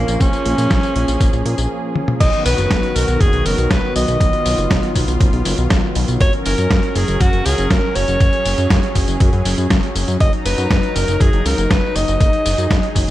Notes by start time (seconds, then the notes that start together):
Already playing: F3 A#3 C#4 A#4
0.08 A#1, closed hi-hat, tambourine
0.20 A#1 C#4 G#4, kick, closed hi-hat, tambourine
0.33 closed hi-hat, tambourine
0.46 A#1, closed hi-hat
0.58 A#2, closed hi-hat, tambourine
0.70 A#1, kick, snare, closed hi-hat, tambourine
0.83 closed hi-hat, tambourine
0.96 A#1, closed hi-hat
1.08 A#1, closed hi-hat, tambourine
1.20 A#1, kick, closed hi-hat, tambourine
1.33 A#1, closed hi-hat, tambourine
1.46 A#2, closed hi-hat
1.58 A#1, closed hi-hat, tambourine
1.96 high tom
2.08 mid tom
2.21 B1 D#3 F#3 B3 F#4 D#5, kick, closed hi-hat, crash, tambourine
2.33 closed hi-hat
2.46 B1 B4, open hi-hat, tambourine
2.58 F#1, closed hi-hat, tambourine
2.71 B1, kick, snare, closed hi-hat, tambourine
2.83 closed hi-hat
2.96 B1 A#4, open hi-hat, tambourine
3.08 B1, closed hi-hat, tambourine
3.21 F#1 G#4, kick, closed hi-hat, tambourine
3.33 B1, closed hi-hat
3.46 F#1 A#4, open hi-hat, tambourine
3.58 B1, closed hi-hat, tambourine
3.71 B1 B4, kick, snare, closed hi-hat, tambourine
3.96 B1 D#5, open hi-hat, tambourine
4.08 B1, closed hi-hat, tambourine
4.20 B1 F4, kick, closed hi-hat, tambourine
4.33 closed hi-hat
4.46 B1, open hi-hat, tambourine
4.58 F#1, closed hi-hat, tambourine
4.71 B1, kick, snare, closed hi-hat, tambourine
4.83 closed hi-hat
4.95 B1, kick, open hi-hat, tambourine
5.08 B1, closed hi-hat, tambourine
5.21 F#1, kick, closed hi-hat, tambourine
5.33 B1, closed hi-hat
5.45 F#1, open hi-hat, tambourine
5.58 B1, closed hi-hat, tambourine
5.70 B1, kick, snare, closed hi-hat, tambourine
5.95 B1, open hi-hat, tambourine
6.08 B1, closed hi-hat, tambourine
6.21 F#1 C#4 A#4 C#5, kick, closed hi-hat, tambourine
6.33 closed hi-hat
6.46 F#1 A#4, open hi-hat, tambourine
6.58 F#2, closed hi-hat, tambourine
6.71 F#1, kick, snare, closed hi-hat, tambourine
6.83 closed hi-hat
6.95 F#1 G#4, open hi-hat, tambourine
7.08 F#1, closed hi-hat, tambourine
7.20 F#2 F#4, kick, closed hi-hat, tambourine
7.33 F#1, closed hi-hat
7.46 C#2 G#4, open hi-hat, tambourine
7.58 F#1, closed hi-hat, tambourine
7.70 F#1 A#4, kick, snare, closed hi-hat, tambourine
7.95 F#1 C#5, open hi-hat, tambourine
8.08 F#1, closed hi-hat, tambourine
8.20 F#1 G#4, kick, closed hi-hat, tambourine
8.33 closed hi-hat
8.45 F#1, open hi-hat, tambourine
8.58 F#2, closed hi-hat, tambourine
8.70 F#1, kick, snare, closed hi-hat, tambourine
8.83 closed hi-hat
8.95 F#1, kick, open hi-hat, tambourine
9.08 F#1, closed hi-hat, tambourine
9.20 F#2, kick, closed hi-hat, tambourine
9.33 F#2, closed hi-hat
9.45 F#1, open hi-hat, tambourine
9.58 F#2, closed hi-hat, tambourine
9.70 F#1, kick, snare, closed hi-hat, tambourine
9.83 closed hi-hat
9.96 F#1, open hi-hat, tambourine
10.08 F#2, closed hi-hat, tambourine
10.20 F#1 D#4 D#5 A#5, kick, closed hi-hat, tambourine
10.33 closed hi-hat
10.45 F#1 B4, open hi-hat, tambourine
10.58 F#2, closed hi-hat, tambourine
10.70 F#1, kick, snare, closed hi-hat, tambourine
10.83 closed hi-hat
10.96 F#1 A#4, open hi-hat, tambourine
11.08 F#1, closed hi-hat, tambourine
11.20 F#2 G#4, kick, closed hi-hat, tambourine
11.33 F#1, closed hi-hat
11.46 C#2 A#4, open hi-hat, tambourine
11.58 F#1, closed hi-hat, tambourine
11.70 F#1 B4, kick, snare, closed hi-hat, tambourine
11.96 F#1 D#5, open hi-hat, tambourine
12.08 F#1, closed hi-hat, tambourine
12.20 F#1 G#4, kick, closed hi-hat, tambourine
12.33 closed hi-hat
12.46 F#1, open hi-hat, tambourine
12.58 F#2, closed hi-hat, tambourine
12.70 F#1, kick, snare, closed hi-hat, tambourine
12.83 closed hi-hat
12.95 F#1, kick, open hi-hat, tambourine